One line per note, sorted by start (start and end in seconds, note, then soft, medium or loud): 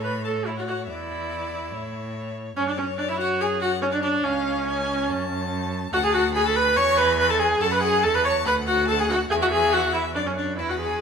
0.00 0.89 A2 medium
0.00 0.12 B4 medium
0.00 0.42 C#5 medium
0.00 0.24 B5 medium
0.25 0.48 A4 medium
0.25 0.33 A5 medium
0.46 0.57 E4 medium
0.46 0.90 C#5 medium
0.46 0.50 E5 medium
0.57 0.62 F#4 medium
0.57 0.67 F#5 medium
0.67 0.76 F#4 loud
0.67 0.87 F#5 medium
0.87 1.74 E2 medium
0.87 2.34 E4 medium
0.87 1.75 D5 medium
0.87 2.32 E5 medium
1.73 2.56 A2 medium
1.73 2.56 C#5 medium
2.57 4.21 F#2 medium
2.57 2.66 C#4 loud
2.57 3.80 C#5 medium
2.57 2.61 C#5 medium
2.67 2.72 D4 loud
2.67 2.80 D5 medium
2.78 2.86 C#4 loud
2.78 2.98 C#5 medium
2.98 3.02 D4 loud
2.98 3.10 D5 medium
3.09 3.19 E4 loud
3.09 3.19 E5 medium
3.20 3.42 F#4 loud
3.20 3.28 F#5 medium
3.41 3.61 G#4 loud
3.41 3.49 G#5 loud
3.61 3.70 F#4 loud
3.61 3.81 F#5 loud
3.82 3.86 C#4 loud
3.82 3.86 C#5 loud
3.82 4.26 C#5 medium
3.92 4.02 D4 loud
3.92 3.96 D5 medium
4.02 4.25 D4 loud
4.02 4.10 D5 medium
4.24 5.10 C#2 loud
4.24 5.71 C#4 loud
4.24 5.69 C#5 medium
4.24 4.66 F5 medium
4.67 5.11 G#5 medium
5.09 5.92 F#2 loud
5.09 5.92 A5 loud
5.92 6.78 D2 loud
5.92 5.97 F#4 loud
5.92 6.05 F#5 loud
5.92 6.32 A5 loud
6.04 6.13 G#4 loud
6.04 6.14 G#5 loud
6.13 6.22 F#4 loud
6.13 6.34 F#5 loud
6.34 6.45 G#4 loud
6.34 6.48 G#5 loud
6.34 6.78 B5 loud
6.46 6.58 A4 loud
6.46 6.58 A5 loud
6.56 6.78 B4 loud
6.56 6.78 B5 loud
6.76 7.60 E2 loud
6.76 6.99 C#5 loud
6.76 7.63 G#5 medium
6.76 7.00 C#6 loud
6.97 7.19 B4 loud
6.97 7.18 B5 loud
7.19 7.29 B4 loud
7.19 7.32 B5 loud
7.30 7.41 A4 loud
7.30 7.39 A5 loud
7.40 7.63 G#4 loud
7.40 7.48 G#5 loud
7.60 8.05 F#2 loud
7.60 7.72 A4 loud
7.60 8.04 F#5 loud
7.60 7.73 A5 loud
7.71 7.83 B4 loud
7.71 7.82 B5 loud
7.83 8.05 G#4 loud
7.83 8.05 G#5 loud
8.03 8.47 E2 loud
8.03 8.17 A4 loud
8.03 8.47 A5 loud
8.03 8.16 A5 loud
8.14 8.24 B4 loud
8.14 8.27 B5 loud
8.25 8.33 C#5 loud
8.25 8.46 C#6 loud
8.45 9.30 D2 loud
8.45 8.54 B4 loud
8.45 8.87 F#5 medium
8.45 8.54 B5 loud
8.67 8.88 F#4 loud
8.67 8.87 F#5 loud
8.87 8.92 A4 loud
8.87 9.29 F#5 loud
8.87 9.01 A5 loud
8.99 9.09 G#4 loud
8.99 9.08 G#5 loud
9.09 9.17 F#4 loud
9.09 9.17 F#5 loud
9.30 10.17 E2 loud
9.30 9.35 G#4 loud
9.30 10.11 E5 loud
9.30 9.36 G#5 loud
9.42 9.46 F#4 loud
9.42 9.46 F#5 loud
9.52 9.74 G#4 loud
9.52 9.75 G#5 loud
9.73 9.92 F#4 loud
9.73 9.96 F#5 loud
9.93 10.01 E4 loud
9.93 10.16 E5 loud
10.15 10.60 F#2 medium
10.15 10.19 D4 loud
10.15 10.23 D5 medium
10.15 10.29 D5 loud
10.26 10.30 C#4 loud
10.26 10.37 C#5 medium
10.36 10.57 D4 loud
10.36 10.56 C#5 medium
10.36 10.46 D5 medium
10.57 11.01 E2 medium
10.57 10.71 E4 loud
10.57 11.01 B4 medium
10.57 10.63 E5 medium
10.69 10.79 F#4 loud
10.69 10.75 F#5 medium
10.80 11.01 G#4 medium
10.80 11.01 G#5 medium